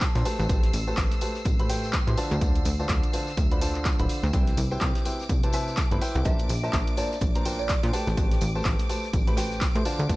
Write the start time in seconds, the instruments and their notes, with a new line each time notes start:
Already playing: analog synth bass A#1, synth bell A5, string machine E6 C7
0.01 kick, snare, clap, closed hi-hat, tambourine
0.15 analog synth bass A#2, upright piano D4 A#4 C5 C6, snare, closed hi-hat, tambourine
0.25 upright piano A3 G4 B4 C5 A5, closed hi-hat, open hi-hat, tambourine
0.39 analog synth bass A1, cross-stick, snare, closed hi-hat, tambourine
0.49 analog synth bass A1, upright piano A3 G4 B4 C5 A5, kick, closed hi-hat, tambourine
0.63 snare, closed hi-hat, tambourine
0.73 analog synth bass A1, closed hi-hat, open hi-hat, tambourine
0.87 upright piano A3 G4 B4 C5 A5, tambourine
0.97 analog synth bass A1, kick, snare, clap, closed hi-hat, tambourine
1.11 snare, closed hi-hat, tambourine
1.21 upright piano A3 G4 B4 C5 A5, closed hi-hat, open hi-hat, tambourine
1.35 snare, tambourine
1.45 analog synth bass A1, kick, closed hi-hat, tambourine
1.59 upright piano A3 G4 B4 C5 B5, closed hi-hat, tambourine
1.69 upright piano A3 G4 B4 C5 G5, snare, closed hi-hat, open hi-hat, tambourine
1.83 snare, tambourine
1.93 kick, snare, clap, closed hi-hat, tambourine
2.07 analog synth bass A2, upright piano G4 B4 C5 C6, closed hi-hat, tambourine
2.17 upright piano D3 F4 C5 D5 A5, open hi-hat, tambourine
2.31 analog synth bass D2, cross-stick, closed hi-hat, tambourine
2.41 analog synth bass D2, upright piano D3 F4 C5 D5 A5, kick, closed hi-hat, tambourine
2.55 closed hi-hat, tambourine
2.65 analog synth bass D2, closed hi-hat, open hi-hat, tambourine
2.79 upright piano D3 F4 C5 D5 A5, tambourine
2.89 analog synth bass D2, kick, snare, clap, closed hi-hat, tambourine
3.03 closed hi-hat, tambourine
3.13 upright piano D3 F4 C5 D5 A5, closed hi-hat, open hi-hat, tambourine
3.27 snare, tambourine
3.37 analog synth bass D2, kick, closed hi-hat, tambourine
3.51 upright piano D3 F4 C5 D5 B5, closed hi-hat, tambourine
3.61 upright piano D3 F4 C5 D5 A5, closed hi-hat, open hi-hat, tambourine
3.75 clap, closed hi-hat, tambourine
3.85 kick, snare, clap, closed hi-hat, tambourine
3.99 analog synth bass D1, upright piano D3 F4 C5 D5 B5, closed hi-hat, tambourine
4.09 closed hi-hat, open hi-hat, tambourine
4.23 analog synth bass D2, cross-stick, snare, closed hi-hat, tambourine
4.33 analog synth bass C2, upright piano C3 E4 B4 C5 G5, string machine D6 D7, kick, closed hi-hat, tambourine
4.47 snare, closed hi-hat, tambourine
4.57 analog synth bass C2, closed hi-hat, open hi-hat, tambourine
4.71 upright piano C3 E4 B4 C5 G5, tambourine
4.81 analog synth bass C2, kick, snare, clap, closed hi-hat, tambourine
4.95 snare, closed hi-hat, tambourine
5.05 upright piano C3 E4 B4 C5 G5, closed hi-hat, open hi-hat, tambourine
5.20 snare, tambourine
5.29 analog synth bass C2, kick, closed hi-hat, tambourine
5.43 upright piano C3 E4 B4 C5 A5, closed hi-hat, tambourine
5.53 upright piano C3 E4 B4 C5 E5, synth bell A5, snare, closed hi-hat, open hi-hat, tambourine
5.67 snare, tambourine
5.77 kick, snare, clap, closed hi-hat, tambourine
5.91 analog synth bass G1, upright piano C3 E4 B4 C5 B5, closed hi-hat, tambourine
6.01 upright piano E4 B4 C5 G5, open hi-hat, tambourine
6.15 analog synth bass C2, synth bell G5, cross-stick, closed hi-hat, tambourine
6.25 analog synth bass A#1, upright piano A#2 D4 A#4 C5 A5, synth bell E5, kick, closed hi-hat, tambourine
6.39 closed hi-hat, tambourine
6.49 analog synth bass A#1, closed hi-hat, open hi-hat, tambourine
6.63 upright piano A#2 D4 A#4 C5 A5, synth bell E5, tambourine
6.73 analog synth bass A#1, kick, snare, clap, closed hi-hat, tambourine
6.87 closed hi-hat, tambourine
6.97 upright piano A#2 D4 A#4 C5 A5, synth bell D5, closed hi-hat, open hi-hat, tambourine
7.11 snare, tambourine
7.21 analog synth bass A#1, kick, closed hi-hat, tambourine
7.35 upright piano A#2 D4 A#4 C5 A#5, closed hi-hat, tambourine
7.45 upright piano A#2 D4 A#4 C5 G5, closed hi-hat, open hi-hat, tambourine
7.59 synth bell D5, tambourine
7.69 kick, snare, clap, closed hi-hat, tambourine
7.83 analog synth bass A#2, upright piano D4 A#4 C5 C6, snare, closed hi-hat, tambourine
7.93 upright piano A3 G4 B4 C5 A5, synth bell G5, closed hi-hat, open hi-hat, tambourine
8.07 analog synth bass A1, cross-stick, snare, closed hi-hat, tambourine
8.17 analog synth bass A1, upright piano A3 G4 B4 C5 A5, kick, closed hi-hat, tambourine
8.31 snare, closed hi-hat, tambourine
8.41 analog synth bass A1, closed hi-hat, open hi-hat, tambourine
8.55 upright piano A3 G4 B4 C5 A5, tambourine
8.65 analog synth bass A1, kick, snare, clap, closed hi-hat, tambourine
8.79 snare, closed hi-hat, tambourine
8.89 upright piano A3 G4 B4 C5 A5, closed hi-hat, open hi-hat, tambourine
9.03 snare, tambourine
9.13 analog synth bass A1, kick, closed hi-hat, tambourine
9.27 upright piano A3 G4 B4 C5 B5, closed hi-hat, tambourine
9.37 upright piano A3 G4 B4 C5 G5, snare, closed hi-hat, open hi-hat, tambourine
9.51 snare, tambourine
9.61 kick, snare, clap, closed hi-hat, tambourine
9.75 analog synth bass A2, upright piano G4 B4 C5 C6, closed hi-hat, tambourine
9.85 upright piano D3 F4 C5 D5 A5, open hi-hat, tambourine
9.99 analog synth bass D2, cross-stick, closed hi-hat, tambourine
10.09 analog synth bass D2, upright piano D3 F4 C5 D5 A5, kick, closed hi-hat, tambourine